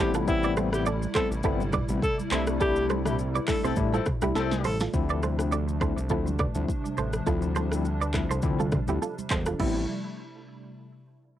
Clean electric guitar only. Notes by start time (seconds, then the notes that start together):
0.00 A4 C5
0.15 F4 A4
0.44 B4 D5
0.57 A4 C5
0.87 A4 D5
1.16 A4 C5
1.45 E4 A4
1.74 B4 D5
2.32 A4 C5
2.61 E4 A4
2.90 A4 C5
3.35 B4 D5
3.64 A4 C5
3.94 F4 A4
4.23 E4 G4
4.36 E4 A4
4.65 A4 C5
4.81 F4 A4
5.10 B4 D5
5.23 A4 C5
5.52 A4 D5
5.82 A4 C5
6.11 F4 A4
6.40 B4 D5
6.98 A4 C5
7.27 F4 A4
7.56 A4 C5
8.02 B4 D5
8.31 A4 C5
8.60 F4 A4
8.89 E4 G4
9.02 F4 A4
9.31 A4 C5
9.47 F4 A4
9.60 E4